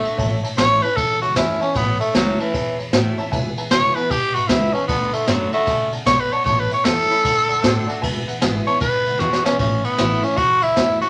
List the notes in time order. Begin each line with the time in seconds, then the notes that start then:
Already playing: A2 A3
0.03 D4 F#4, muted upright bass stroke, ride
0.17 A1 A2 C#5 E5 A5, kick, ride
0.43 C#5 E5 A5, muted upright bass stroke, ride
0.56 A1 E3 A3 C#4 E4 C#5 E5 A5, snare, ride
0.82 C#4 E4 B4 C#5 E5 A5, ride
0.96 E2 A4 C#5 E5 A5, kick, ride
1.21 C#2 F#4 C#5 E5 A5, ride
1.35 E2 E3 A3 C#4 E4 C#5 E5 A5, kick, snare, ride
1.60 C#4 E4 C#5 E5 A5, muted upright bass stroke, ride
1.74 A1 A2 B3 C#5 E5 B5, kick, ride
1.99 A3 C#5 E5 A5, muted upright bass stroke, ride
2.14 C#2 E3 F#3 A3 C#4 E4 C#5 E5 A5, snare, ride
2.39 E3 C#5 E5 A5, muted upright bass stroke, ride
2.53 E2 C#5 E5 A5, kick, ride
2.79 F#2 C#5 E5 B5, ride
2.93 A2 E3 A3 C#4 E4 C#5 E5 A5, snare, ride
3.18 C#4 E4 C#5 E5 A5, muted upright bass stroke, ride
3.31 E1 E2 B4 E5 G#5, kick, ride
3.57 B4 E5 G#5, muted upright bass stroke, ride
3.70 E1 E3 G#3 B3 E4 B4 C#5 E5 G#5, snare, ride
3.95 B3 E4 B4 E5 G#5, muted upright bass stroke, ride
4.10 B1 B2 G4 B4 E5 G#5, kick, ride
4.35 G#1 F#4 B4 E5 B5, ride
4.48 C#2 E3 G#3 B3 E4 B4 E5 F#5, kick, snare, ride
4.73 C#4 B4 E5 G#5, muted upright bass stroke, ride
4.87 D2 D3 B3 D5 F#5 A5, kick, ride
5.13 A3 D5 F#5 A5, muted upright bass stroke, ride
5.27 F#2 D3 F#3 A3 D4 F#4 D5 F#5 B5, snare, ride
5.52 A3 D4 F#4 D5 F#5 B5, ride
5.66 A2 C#3 D5 F#5 A5, kick, snare, ride
5.92 B2 D5 F#5 A5, ride
6.06 B1 B2 C#5 D5 F#5 B5, kick, snare, ride
6.20 B4
6.32 C#5 D5 F#5 A5, muted upright bass stroke, ride
6.44 A1 A2 C#5 E5 A5, kick, ride
6.60 B4
6.71 C#5 E5 G5, muted upright bass stroke, ride
6.84 E2 E3 A3 C#4 E4 A4 C#5 E5 A5, snare, ride
7.09 C#4 E4 C#5 E5 B5, muted upright bass stroke, ride
7.24 D2 D3 D5 F#5 A5, kick, snare, ride
7.49 F#2 D5 F#5 A5, ride
7.62 A2 D3 A3 D4 F#4 D5 A5, kick, snare, ride
7.87 D4 F#4 D5 F#5 A5, muted upright bass stroke, ride
8.01 E1 E2 B4 E5 G#5, kick, ride
8.27 B4 E5 F#5, muted upright bass stroke, ride
8.40 G#1 E3 G#3 B3 E4 B4 E5 G#5, snare, ride
8.66 B3 E4 B4 C#5 E5 G#5, muted upright bass stroke, ride
8.80 B1 B2 B4 E5 G#5, kick, ride
9.06 C#2 B4 E5 F#5, ride
9.18 E2 E3 G#3 B3 E4 F#4 B4 E5 B5, snare
9.33 snare
9.45 C#4 B4 E5 G#5, muted upright bass stroke, snare
9.59 A1 A2 C#4, kick, ride
9.84 B3, muted upright bass stroke, ride
9.98 A1 E3 A3 C#4 E4, snare, ride
10.22 C#4 E4, muted upright bass stroke, ride
10.37 E2 F#4, kick, snare, ride
10.62 C#2 E4, ride
10.75 E2 E3 A3 C#4 E4, kick, snare, ride
11.01 C#4 E4 F#4, muted upright bass stroke, ride